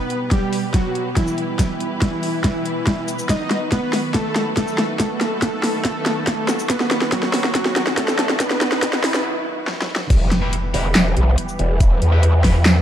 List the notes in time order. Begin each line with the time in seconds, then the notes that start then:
Already playing: B2 G3 B3 G4 B4
0.10 closed hi-hat
0.31 G3 G4, kick, snare, closed hi-hat
0.53 open hi-hat
0.74 F#3 F#4, kick, snare, closed hi-hat
0.95 closed hi-hat
1.17 E3 E4, kick, snare, closed hi-hat
1.27 shaker
1.38 closed hi-hat
1.59 E3 E4, kick, snare, closed hi-hat, shaker
1.80 closed hi-hat
2.02 kick, snare, closed hi-hat
2.23 open hi-hat
2.44 kick, snare, closed hi-hat
2.65 closed hi-hat
2.87 kick, snare, closed hi-hat
3.08 closed hi-hat, shaker
3.19 shaker
3.29 D#3 F#3 D#4 F#4 D#5, kick, snare, closed hi-hat, riser, shaker
3.51 snare, closed hi-hat
3.72 B3 B4, kick, snare, closed hi-hat
3.93 snare, open hi-hat
4.14 A3 A4, kick, snare, closed hi-hat
4.36 snare, closed hi-hat
4.57 A3 A4, kick, snare, closed hi-hat
4.68 shaker
4.78 snare, closed hi-hat
5.00 A3 A4, kick, snare, closed hi-hat, shaker
5.21 snare, closed hi-hat
5.42 kick, snare, closed hi-hat
5.63 snare, open hi-hat
5.85 kick, snare, closed hi-hat
6.06 snare, closed hi-hat
6.27 kick, snare, closed hi-hat
6.49 snare, closed hi-hat, shaker
6.59 shaker
6.70 B3 B4, kick, snare, closed hi-hat, shaker
6.80 snare
6.91 snare, closed hi-hat
7.02 snare
7.12 F#3 F#4, kick, snare, closed hi-hat
7.23 snare
7.34 snare, open hi-hat
7.44 snare
7.55 F#3 F#4, kick, snare, closed hi-hat
7.66 snare
7.76 snare, closed hi-hat
7.87 snare
7.97 A3 A4, kick, snare, closed hi-hat
8.08 snare, shaker
8.19 snare, closed hi-hat
8.29 snare
8.40 B3 B4, kick, snare, closed hi-hat, shaker
8.51 snare
8.61 snare, closed hi-hat
8.72 snare
8.82 kick, snare, closed hi-hat
8.93 snare
9.04 snare, open hi-hat
9.14 snare
9.68 snare
9.82 snare
9.96 snare
10.10 E1 E3 G3 B3 G4 B4, kick, closed hi-hat, crash, impact, shaker
10.31 snare, closed hi-hat
10.42 E4 G4 B4
10.53 closed hi-hat
10.74 E1 E4 G4 B4, open hi-hat
10.95 E1, snare, clap, closed hi-hat
11.17 B1, closed hi-hat
11.38 closed hi-hat
11.49 shaker
11.59 E1, closed hi-hat
11.80 kick, closed hi-hat, shaker
12.02 E2, closed hi-hat
12.12 E4 G4 B4
12.23 closed hi-hat
12.44 E4 G4 B4, kick, snare, open hi-hat
12.66 snare, clap, closed hi-hat